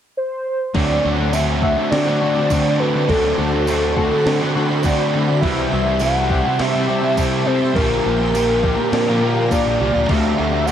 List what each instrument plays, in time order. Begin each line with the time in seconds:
0.17 soft synth lead C5
0.75 fingered electric bass D2, overdriven electric guitar D3 A3 C4 F#4, clean electric guitar F#3, distorted electric guitar D4, ambient pad F#4 C5 D5 A5, soft synth lead D5, kick, crash
1.03 fingered electric bass D2, overdriven electric guitar D3 A3 C4 F#4, clean electric guitar F#3
1.18 overdriven electric guitar A3 C4 F#4, distorted electric guitar D4
1.33 overdriven electric guitar D3 A3 C4 F#4, clean electric guitar A3, distorted electric guitar D4, soft synth lead E5, tambourine, crash
1.62 distorted electric guitar D3 A3 D4, overdriven electric guitar D3 A3 C4 F#4, clean electric guitar F#4, kick
1.77 overdriven electric guitar A3 C4 F#4, muted distorted electric guitar stroke
1.90 fingered electric bass D3, overdriven electric guitar D3 A3 C4 F#4, clean electric guitar C4, soft synth lead D5, snare, crash
2.06 overdriven electric guitar A3 C4 F#4, distorted electric guitar D4
2.21 overdriven electric guitar D3 A3 C4 F#4, distorted electric guitar D4, clean electric guitar F#4
2.35 overdriven electric guitar A3 C4 F#4, distorted electric guitar D4, snare
2.50 overdriven electric guitar D3 A3 C4 F#4, clean electric guitar C4, distorted electric guitar D4, kick, tambourine, crash
2.79 overdriven electric guitar D3 A3 C4 F#4, clean electric guitar A3, distorted electric guitar D4, soft synth lead B4
2.95 overdriven electric guitar A3 C4 F#4, muted distorted electric guitar stroke
3.09 fingered electric bass D2, overdriven electric guitar D3 A3 C4 F#4, clean electric guitar F#3, distorted electric guitar D4, soft synth lead A4, ambient pad B5, kick, crash
3.38 fingered electric bass D2, overdriven electric guitar D3 A3 C4 F#4, clean electric guitar F#3
3.53 overdriven electric guitar A3 C4 F#4, distorted electric guitar D4
3.67 overdriven electric guitar D3 A3 C4 F#4, clean electric guitar A3, tambourine, crash
3.71 distorted electric guitar D4
3.96 overdriven electric guitar D3 A3 C4 F#4, distorted electric guitar D3 A3 D4, clean electric guitar F#4, kick
4.12 overdriven electric guitar A3 C4 F#4, muted distorted electric guitar stroke
4.26 fingered electric bass D3, overdriven electric guitar D3 A3 C4 F#4, clean electric guitar C4, snare, crash
4.41 overdriven electric guitar A3 C4 F#4, distorted electric guitar D4
4.56 overdriven electric guitar D3 A3 C4 F#4, distorted electric guitar D4, clean electric guitar F#4
4.70 overdriven electric guitar A3 C4 F#4, distorted electric guitar D4
4.82 overdriven electric guitar D3 A3 C4, clean electric guitar C4, soft synth lead D5, kick, tambourine, crash
4.87 distorted electric guitar D4, overdriven electric guitar F#4
5.13 overdriven electric guitar D3 A3 C4 F#4, clean electric guitar A3, distorted electric guitar D4
5.28 overdriven electric guitar A3 C4 F#4, muted distorted electric guitar stroke
5.41 fingered electric bass C2, overdriven electric guitar C3 G3 C4 E4, clean electric guitar E3, ambient pad G4 E5 A5, soft synth lead E5, kick, crash
5.70 fingered electric bass C2, overdriven electric guitar C3 G3 C4 E4, clean electric guitar E3
5.86 overdriven electric guitar G3 C4 E4
5.99 overdriven electric guitar C3 G3 C4 E4, clean electric guitar A3, soft synth lead F#5, tambourine, crash
6.30 overdriven electric guitar C3 G3 C4 E4, distorted electric guitar C3 G3 C4, clean electric guitar G4, kick
6.44 overdriven electric guitar G3 C4 E4, muted distorted electric guitar stroke
6.59 fingered electric bass C3, overdriven electric guitar C3 G3 C4 E4, clean electric guitar C4, soft synth lead E5, snare, crash
6.73 overdriven electric guitar G3 C4 E4
6.87 overdriven electric guitar C3 G3 C4 E4, clean electric guitar G4
7.02 overdriven electric guitar G3 C4 E4
7.17 overdriven electric guitar C3 G3 C4 E4, clean electric guitar C4, kick, tambourine, crash
7.46 overdriven electric guitar C3 G3 C4 E4, clean electric guitar A3, soft synth lead C5
7.60 overdriven electric guitar G3 C4 E4, muted distorted electric guitar stroke
7.75 fingered electric bass A#1, overdriven electric guitar A#2 D3 F3 A#3 F4, clean electric guitar F3, soft synth lead A#4, ambient pad D5 F5 A#5, kick, crash
8.06 fingered electric bass A#1, overdriven electric guitar A#2 D3 F3 A#3 F4, clean electric guitar F3
8.21 overdriven electric guitar F3 A#3 F4
8.32 distorted electric guitar A#2 A#3, clean electric guitar A#3, tambourine, crash
8.37 overdriven electric guitar A#2 D3 F3 A#3 F4
8.61 distorted electric guitar A#2 F3 A#3, overdriven electric guitar A#2 D3 F3 A#3, clean electric guitar G4, kick
8.66 overdriven electric guitar F4
8.77 overdriven electric guitar F4, muted distorted electric guitar stroke
8.81 overdriven electric guitar F3 A#3
8.92 fingered electric bass A#2, overdriven electric guitar A#2 D3 F3 A#3 F4, clean electric guitar D4, snare, crash
9.09 overdriven electric guitar F3 A#3 F4
9.20 distorted electric guitar A#2, overdriven electric guitar A#2 D3 F3 A#3 F4, clean electric guitar G4
9.37 overdriven electric guitar F3 A#3 F4
9.50 overdriven electric guitar A#2 D3 F3 A#3 F4, clean electric guitar D4, soft synth lead D5, kick, tambourine, crash
9.66 fingered electric bass A#1
9.78 fingered electric bass C2, distorted electric guitar A#2, overdriven electric guitar A#2 D3 F3 A#3, clean electric guitar A#3
9.83 overdriven electric guitar F4
9.93 fingered electric bass D2, overdriven electric guitar F3 A#3 F4, muted distorted electric guitar stroke
10.09 fingered electric bass D2, overdriven electric guitar D3 A3 C4 F#4, clean electric guitar A3, distorted electric guitar D4, soft synth lead E5, kick, crash
10.37 fingered electric bass D2, overdriven electric guitar D3 A3 C4 F#4, clean electric guitar A3
10.52 overdriven electric guitar A3 C4 F#4, distorted electric guitar D4
10.66 overdriven electric guitar D3 A3 C4 F#4, clean electric guitar A3, soft synth lead F#5, tambourine, crash